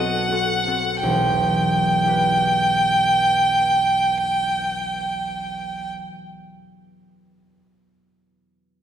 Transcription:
Already playing: B1 B3 C4 F#4 A4 F#5
0.31 C4 F#4 A4
0.67 C4 F#4 A4
1.00 E1 B1 G5
2.04 E4 G4
2.09 B4

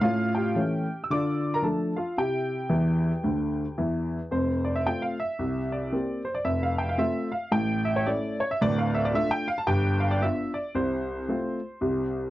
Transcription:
0.01 A2 C#4 F4 F5
0.35 G4 G5
0.55 E3 A3 C#4
1.04 E6
1.10 D3 F4 D5 D6
1.54 A#4 A#5
1.62 F3 A3 D4 A4 A5
1.96 F4 F5
2.18 C3 E4 G4 G5
2.69 E2 E3
3.23 D2 D3
3.78 E2 E3
4.31 F1 F2 C5
4.65 D5
4.76 E5
4.86 A3 C4 F4 G5
5.02 F5
5.20 E5
5.39 C2 C3
5.72 D5
5.92 A#3 C4 G4
6.25 C5
6.35 D5
6.44 F1 F2 E5
6.63 F5
6.78 G5
6.89 F5
6.98 A3 C4 F4 E5
7.32 F5
7.52 A1 A2 G5
7.85 E5
7.96 C#5
8.06 A3 C#4 E4 D5
8.40 C#5
8.51 E5
8.61 D1 D2 D5
8.78 F5
8.94 E5
9.05 D5
9.14 A3 D4 F4 E5
9.31 G5
9.48 F5
9.58 A5
9.67 G1 G2 G5
10.00 F5
10.11 D5
10.21 B3 D4 F4 E5
10.54 D5
10.75 C2 C3 C5
11.28 A3 C4 F4
11.81 C2 C3

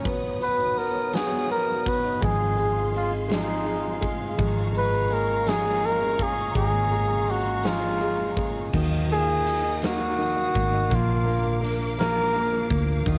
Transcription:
Already playing: A#3 C#4 C#5
0.04 B1 F#3 B3 D#6, kick, closed hi-hat
0.23 B3
0.40 F#4 B4, closed hi-hat
0.59 D#4
0.77 B3 A#4, closed hi-hat
0.95 D#4
1.13 F#3 F#4 G#4, snare, closed hi-hat
1.32 B3
1.49 B3 F#4 A#4, closed hi-hat
1.68 D#4
1.85 B3 F#4 B4, kick, closed hi-hat
2.04 D#4
2.21 G#1 F3 G#3 G#4 F5 C6, kick, closed hi-hat
2.40 C4
2.57 G#3 G#4, closed hi-hat
2.77 D#4
2.92 G#3 C4, closed hi-hat
2.97 F4
3.11 D#4
3.29 F3 G#3, snare, closed hi-hat
3.33 D#4
3.47 C4
3.65 G#3 G#4, closed hi-hat
3.83 D#4
4.01 G#3 C4, kick, closed hi-hat
4.19 D#4
4.37 G#1 F3 G#3 A#5 C#6, kick, closed hi-hat
4.73 G#3 G#4, closed hi-hat
4.78 B4
4.92 C#4
5.10 G#3 A#3 A#4, closed hi-hat
5.28 C#4
5.46 F3 G#3 G#4, snare, closed hi-hat
5.64 A#3
5.83 G#3 G#4 A#4, closed hi-hat
6.01 C#4
6.18 G#3 A#3, kick, closed hi-hat
6.22 G#4
6.37 C#4
6.55 G#1 G#3 G#4, kick, closed hi-hat
6.73 A#3
6.91 G#3 G#4, closed hi-hat
7.10 C#4
7.28 G#3 A#3 F#4, closed hi-hat
7.46 C#4
7.63 F3 G#3 F4, snare, closed hi-hat
7.82 A#3
8.00 G#3 G#4, closed hi-hat
8.18 C#4
8.37 G#3 A#3, kick, closed hi-hat
8.55 C#4
8.73 D#2 D#3 F#3 F5 D#6, kick, crash
8.91 D#4
9.09 A#3 F4 G#4, closed hi-hat
9.28 D#4
9.47 D#4, closed hi-hat
9.64 D#4
9.82 F#3 A#3 F#4, snare, closed hi-hat
10.00 D#4
10.18 D#3, closed hi-hat
10.37 D#4
10.55 G#1 A#3, kick, closed hi-hat
10.73 D#4
10.90 A#1 F3 A#3 A#4 D6, kick, closed hi-hat
10.95 F4
11.08 A#3
11.26 A#3 D4, closed hi-hat
11.45 A#3
11.61 A#3 D4, closed hi-hat
11.81 A#3
11.99 F3 A#3 A#4, snare, closed hi-hat
12.17 A#3
12.35 A#3 D4, closed hi-hat
12.53 A#3
12.71 D2 A#3 D4, kick, closed hi-hat
12.87 A#3
13.05 D#2 D#3 F#3 D#6, kick, closed hi-hat

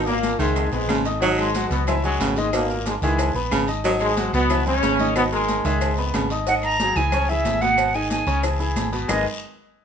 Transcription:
Already playing: G#1 B2
0.06 A#2 A#3 A#4 A#5, high conga, high timbale, maracas
0.23 high conga, high timbale, low agogo, short guiro, maracas
0.39 C#2 G#2 D#3 G#3 G#4 E5, short guiro, maracas
0.56 high conga, low timbale, low agogo, long guiro, claves, maracas
0.71 A#1 G#2 G#3 B3 B4 B5, high conga, low timbale, maracas
0.88 G#1 C#3, high conga, low timbale, low agogo, short guiro, claves, maracas
1.05 D#4 D#5 D#6, low timbale, low agogo, short guiro, maracas
1.21 F#2 D#3 F#3 D#4 D#5, cowbell, high conga, low agogo, long guiro, maracas
1.37 G#2 G#3, high conga, low agogo, claves, maracas
1.54 F#3 F#4 F#5, cowbell, high conga, low timbale, low agogo, short guiro, maracas
1.70 C#2 B2 B3, cowbell, high conga, short guiro, maracas
1.87 G#2 E3 G#3 E4 E5, cowbell, high conga, low conga, low agogo, long guiro, claves, maracas
2.03 F#2 F#3 G#3 G#4 G#5, high conga, low conga, maracas
2.20 G#1 C#3 B3 B4 B5, cowbell, high conga, low timbale, low agogo, short guiro, maracas
2.36 G#2 D#3 G#3 D#4 D#5, high conga, short guiro, maracas
2.53 A#2 B2 A#3, cowbell, low agogo, long guiro, claves, maracas
2.70 A#3 A#4 A#5, high conga, maracas
2.86 G#2 G#3, cowbell, high conga, low timbale, low agogo, short guiro, maracas
3.02 C#2 D#3 E3 G#3 E4 G#4 E5, short guiro, maracas
3.18 cowbell, high conga, low agogo, long guiro, claves, maracas
3.34 A#1 B3 B4 B5, high conga, maracas
3.51 G#1 C#3, cowbell, high conga, low timbale, low agogo, short guiro, claves, maracas
3.67 D#4 D#5 D#6, low agogo, short guiro, maracas
3.84 F#2 D#3 F#3 D#4 D#5, cowbell, high conga, low agogo, long guiro, maracas
4.00 G#2 G#3, high conga, low agogo, claves, maracas
4.17 F#3 F#4 F#5, cowbell, high conga, low timbale, low agogo, short guiro, maracas
4.33 C#2 B2 B3, cowbell, high conga, short guiro, maracas
4.50 E3 E4 E5, cowbell, high conga, low conga, low agogo, long guiro, claves, maracas
4.66 C#3 G#3 C#4 G#4 G#5, high conga, low conga, maracas
4.82 G#1 C#3 B3 B4 B5, cowbell, high conga, low timbale, low agogo, short guiro, maracas
4.99 D#3 D#4 D#5, high conga, short guiro, maracas
5.15 B2 B3, cowbell, high conga, low agogo, long guiro, claves, maracas
5.32 G#2 G#3 A#3 A#4 A#5, high conga, maracas
5.48 cowbell, high conga, low timbale, low agogo, short guiro, maracas
5.65 C#2 D#3 G#3 G#4 E5, high timbale, short guiro, maracas
5.81 G#2 G#3, cowbell, high conga, low agogo, long guiro, claves, maracas
5.97 B3 B4 B5, high conga, low timbale, maracas
6.14 G#1 C#3, cowbell, high conga, low timbale, low agogo, short guiro, claves, maracas
6.30 D#4 D#5 D#6, high conga, low timbale, low agogo, short guiro, maracas
6.47 D#3 D#4 D#5 F#5, cowbell, high conga, low agogo, long guiro, maracas
6.63 A#5, high conga, low agogo, claves, maracas
6.80 F#3 F#4 G#4, cowbell, high conga, low timbale, low agogo, short guiro, maracas
6.96 C#2 E3 E4 G#4 G#5, cowbell, high conga, short guiro, maracas
7.12 C#3 C#4 C#5, cowbell, high conga, low conga, low agogo, long guiro, claves, maracas
7.29 E3 E4 G#4 E5, high conga, low conga, maracas
7.45 G#1, cowbell, high conga, low timbale, low agogo, short guiro, maracas
7.61 B2 B3 B4 F#5, high conga, short guiro, maracas
7.78 cowbell, low agogo, long guiro, claves, maracas
7.95 D#3 D#4 G#4 G#5, high conga, maracas
8.10 G#5, cowbell, high conga, low timbale, low agogo, short guiro, maracas
8.27 C#2 C#3 C#4 C#5, short guiro, maracas
8.43 E3 E4 G#4, cowbell, high conga, low agogo, long guiro, claves, maracas
8.60 E3 E4 G#4, high conga, maracas
8.75 G#1, cowbell, high conga, low timbale, low agogo, short guiro, claves, maracas
8.92 B2 B3 B4, high conga, low agogo, short guiro, maracas
9.08 G#1 G#3 D#4 G#4 A#4 B4 D#5, low bongo, low conga, low timbale, long guiro, claves, maracas

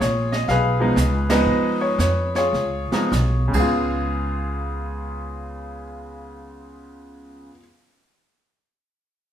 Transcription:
Already playing: F4 G#4
0.01 A#1 C#5, snare, hi-hat pedal
0.32 D#5, snare
0.48 B1 G#4 B4 F5, brush sweep, snare
0.80 F3 G#3 B3 D#4
0.96 C#2, snare, hi-hat pedal
1.30 F3 G#3 B3 D#4 G#4 B4 D#5, snare, ride
1.46 G#2, brush sweep
1.81 C#5
1.98 F2 C#5, snare, hi-hat pedal
2.35 F4 G#4 C#5, snare
2.53 C#2, brush sweep, snare
2.91 F3 G#3 B3 D#4, muted upright bass stroke, snare
3.12 B1, snare, hi-hat pedal
3.48 C#3 G#3
3.53 C#2 B3 G#4, kick, crash
3.60 F4

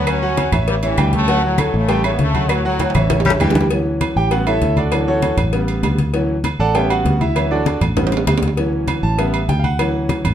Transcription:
Already playing: D2 F#3 F#4 F#5
0.07 F#3 C#4, cowbell, high conga, low agogo, claves
0.22 F#3 F#4 F#5, high conga
0.37 cowbell, high conga, low agogo
0.52 A1 C#4 C#5 E5, cowbell, high conga, low conga, low agogo, claves
0.67 C#3 G3, cowbell, high conga
0.83 G2 E3 C#4 C#5 E5, high conga, low agogo
0.98 D2 G3 G4 G5, cowbell, high conga, low agogo, claves
1.13 C#3 A3, cowbell, high conga
1.28 F#3 F#4 F#5, cowbell
1.43 A2 F#3, high conga
1.58 A3 A4 C#5, cowbell, high conga, low agogo, claves
1.73 A1 C#3 A3, high conga
1.89 G3 G4 G5, cowbell, high conga, low agogo
2.04 C#3 A3 C#4 C#5 E5, high conga, low agogo, claves
2.12 B3
2.19 D2 C#3 A3, cowbell, high conga
2.34 F#3 F#4 F#5, high conga, low agogo
2.49 A2 F#3, cowbell, high conga, low agogo, claves
2.64 A2 F#3 F#4 F#5, high conga
2.79 cowbell, high conga, high timbale, low agogo
2.90 high timbale
2.95 A1 G2 E3 C#4 C#5 E5, cowbell, high conga, low agogo, claves
3.10 cowbell, high bongo, high conga, high timbale
3.20 low timbale
3.25 G3 C#4 C#5 E5, high conga, low agogo
3.30 high bongo
3.40 D2 E3 G3 G4 G5, cowbell, low conga, low timbale, low agogo, claves
3.50 low bongo, low timbale
3.55 cowbell, low conga
3.61 low bongo, low timbale
3.71 E3 F#3 C#4, cowbell, high conga
3.86 high conga
4.01 cowbell, high conga, low agogo
4.16 A1 G4 G5, high conga
4.31 C#3 G3 B3 F#4 F#5, cowbell, high conga, low agogo
4.46 E4 A4 C#5 E5, high conga, low agogo
4.61 D2, cowbell, high conga
4.77 D4 F#4 A4 D5, high conga, low agogo
4.92 E3 F#3 C#4, cowbell, high conga, low agogo
5.07 C#4 F#4 A4 C#5, high conga
5.22 cowbell, high conga, low agogo
5.37 A1, cowbell, high conga, low conga, low agogo
5.53 C#3 G3 B3, cowbell, high conga
5.68 high conga, low agogo
5.83 D2, cowbell, high conga, low timbale, low agogo
5.98 cowbell, high conga
6.14 E3 F#3 C#4, cowbell
6.29 high conga
6.44 cowbell, high conga, low agogo
6.59 A1 A4 D5 F#5 A5, high conga
6.74 C#3 G3 B3 G4 C#5 E5 G5, cowbell, high conga, low agogo
6.90 F#4 F#5, high conga, low agogo
7.05 D2, cowbell, high conga, low timbale
7.21 E4 E5, high conga, low agogo
7.35 E3 F#3 C#4, cowbell, high conga, low agogo
7.51 D4 F#4 A4 D5, high conga
7.66 cowbell, high bongo, high conga, low agogo
7.81 A1, cowbell, low bongo, high conga, low conga, low agogo
7.96 C#3 G3 B3, cowbell, high bongo, high conga, low conga, high timbale
8.07 high timbale
8.12 low bongo, high conga, low agogo
8.17 low timbale
8.27 D2, cowbell, low bongo, high conga, low timbale, low agogo
8.38 low timbale
8.42 cowbell, low bongo, high conga
8.48 low timbale
8.57 E3 F#3 C#4, cowbell, high conga
8.73 high conga
8.88 cowbell, high conga, low agogo
9.03 A1 A5, high conga
9.18 C#3 G3 B3 E5, cowbell, high conga, low agogo
9.33 high conga, low agogo
9.49 D2 G5, cowbell, high conga, low timbale
9.59 F5
9.64 F#5, high conga, low agogo
9.79 E3 F#3 C#4, cowbell, high conga, low agogo
9.94 high conga
10.09 cowbell, high conga, low agogo
10.25 A1, cowbell, high conga, low conga, low agogo

